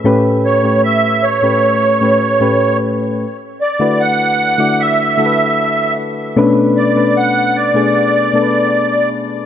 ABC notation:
X:1
M:4/4
L:1/16
Q:1/4=76
K:Bm
V:1 name="Accordion"
z2 c2 e2 c8 z2 | z2 d2 f4 e6 z2 | z2 d2 f2 d8 z2 |]
V:2 name="Synth keys"
[A,,A,CGB]2 z [A,,A,CGc]3 z [A,,A,CGB]2 z [A,,A,CGB]2 [A,,A,CGB]3 z | z3 [D,A,EFB]3 z [D,A,EFd]2 z [D,A,EFAB]4 z2 | [B,,A,CDB]2 z [B,,A,CDB]3 z [B,,A,B,D^G]2 z [B,,A,B,DAB]4- [B,,A,B,DAB] z |]